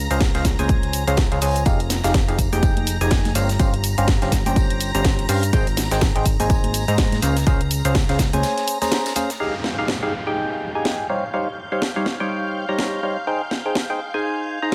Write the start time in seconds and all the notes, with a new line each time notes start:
Already playing: A#5 A#6
0.11 C#2 C#4 G#4 C5 F5, closed hi-hat, tambourine, shaker
0.20 kick, snare, closed hi-hat, tambourine, shaker
0.35 C#2 C#4 G#4 C5 F5, snare, closed hi-hat, tambourine
0.45 kick, snare, open hi-hat, tambourine, shaker
0.59 C#2 C#4 G#4 C5 G#5, closed hi-hat, tambourine, high conga, shaker
0.69 kick, closed hi-hat, tambourine, shaker
0.83 closed hi-hat, tambourine
0.93 open hi-hat, tambourine, shaker
1.07 C#2 C#4 G#4 C5 F5, closed hi-hat, tambourine, shaker
1.17 kick, snare, closed hi-hat, tambourine, shaker
1.31 C#2 C#4 G#4 C5 F5, closed hi-hat, tambourine
1.41 C#2 C#4 G#4 C5 G#5, open hi-hat, shaker
1.55 closed hi-hat, tambourine, shaker
1.65 F1 D#4 G4 G#4 F5 A#5 A#6, kick, closed hi-hat, tambourine, shaker
1.79 closed hi-hat, tambourine
1.90 snare, open hi-hat, tambourine, shaker
2.04 F1 D#4 G4 G#4 F5, snare, closed hi-hat, tambourine, shaker
2.14 kick, snare, closed hi-hat, tambourine, shaker
2.28 F1 D#4 G4 G#4 F5, closed hi-hat, tambourine
2.39 kick, open hi-hat, tambourine, shaker
2.52 F1 D#4 G4 G#4 G5, closed hi-hat, tambourine, high conga, shaker
2.62 kick, closed hi-hat, tambourine, shaker
2.77 closed hi-hat, tambourine, high conga
2.87 open hi-hat, tambourine, shaker
3.01 F1 D#4 G4 G#4 G#5, closed hi-hat, tambourine, shaker
3.10 kick, snare, closed hi-hat, tambourine, shaker
3.24 snare, closed hi-hat, tambourine, high conga
3.35 G1 C#4 G4 C5 F5, open hi-hat, tambourine, shaker
3.49 snare, closed hi-hat, tambourine, shaker
3.60 G1 C#4 G4 C5 F5, kick, closed hi-hat, tambourine, shaker
3.74 closed hi-hat, tambourine
3.84 open hi-hat, tambourine, shaker
3.98 G1 C#4 G4 C5 F5, closed hi-hat, tambourine, shaker
4.08 kick, snare, closed hi-hat, tambourine, shaker
4.22 G1 C#4 G4 C5 F5, snare, closed hi-hat, tambourine
4.32 kick, snare, open hi-hat, tambourine, shaker
4.46 G1 C#4 G4 C5 G5, closed hi-hat, tambourine, high conga, shaker
4.56 kick, closed hi-hat, tambourine, shaker
4.70 closed hi-hat, tambourine
4.81 open hi-hat, tambourine, shaker
4.95 G1 C#4 G4 C5 A#5, closed hi-hat, tambourine, shaker
5.05 kick, snare, closed hi-hat, tambourine, shaker
5.19 closed hi-hat, tambourine
5.29 G2 C#4 G4 C5 F5, open hi-hat, shaker
5.43 closed hi-hat, tambourine, shaker
5.53 G#1 D#4 G#4 C5 G5, kick, closed hi-hat, tambourine, shaker
5.67 closed hi-hat, tambourine
5.77 snare, open hi-hat, tambourine, shaker
5.91 G#1 D#4 G#4 C5 G5, snare, closed hi-hat, tambourine, shaker
6.01 kick, snare, closed hi-hat, tambourine, shaker
6.15 G#1 D#4 G#4 C5 G5, closed hi-hat, tambourine
6.26 kick, open hi-hat, tambourine, shaker
6.40 G#1 D#4 G#4 C5 G#5, closed hi-hat, tambourine, high conga, shaker
6.50 kick, closed hi-hat, tambourine, shaker
6.64 closed hi-hat, tambourine, high conga
6.74 open hi-hat, tambourine, shaker
6.88 G#2 D#4 G#4 C5 A#5, closed hi-hat, tambourine, shaker
6.98 kick, snare, closed hi-hat, tambourine, shaker
7.12 snare, closed hi-hat, tambourine, high conga
7.22 C#2 C#4 G#4 C5 F5, open hi-hat, tambourine, shaker
7.37 snare, closed hi-hat, tambourine, shaker
7.47 C#2 C#4 G#4 C5 F5, kick, closed hi-hat, tambourine, shaker
7.60 closed hi-hat, tambourine
7.71 open hi-hat, tambourine, shaker
7.84 C#2 C#4 G#4 C5 F5, closed hi-hat, tambourine, shaker
7.94 kick, snare, closed hi-hat, tambourine, shaker
8.09 C#2 C#4 G#4 C5 F5, snare, closed hi-hat, tambourine
8.19 kick, snare, open hi-hat, tambourine, shaker
8.33 C#2 C#4 G#4 C5 G#5, closed hi-hat, tambourine, high conga, shaker
8.43 snare, closed hi-hat, tambourine, shaker
8.58 snare, closed hi-hat, tambourine
8.68 open hi-hat, tambourine, shaker
8.82 C#4 G#4 C5 A#5, snare, closed hi-hat, tambourine, high conga, shaker
8.92 snare, closed hi-hat, tambourine, shaker
9.05 snare, closed hi-hat, tambourine
9.16 C#4 G#4 C5 F5, snare, open hi-hat, tambourine, high conga, shaker
9.30 snare, closed hi-hat, tambourine, shaker
9.40 D#4 G4 G#4 F5 G6, downlifter
9.64 snare
9.79 D#4 G4 G#4 F5
9.88 snare
10.03 D#4 G4 G#4 F5
10.27 D#4 G4 G#4 G5
10.75 D#4 G4 G#4 G#5
10.85 snare
11.10 G3 D#4 G4 C5 C#5 F5
11.34 G3 D#4 G4 C5 C#5 F5
11.72 G3 D#4 G4 C5 C#5 F5
11.82 snare
11.96 G3 D#4 G4 C5 C#5 F5
12.06 snare
12.20 G3 D#4 G4 C5 C#5 G5
12.69 G3 D#4 G4 C5 C#5 A#5
12.79 snare
13.03 G3 D#4 G4 C5 C#5 F5
13.27 D#4 G#4 C5 G5
13.51 snare
13.66 D#4 G#4 C5 G5
13.75 snare
13.90 D#4 G#4 C5 G5
14.14 D#4 G#4 C5 G#5
14.62 D#4 G#4 C5 A#5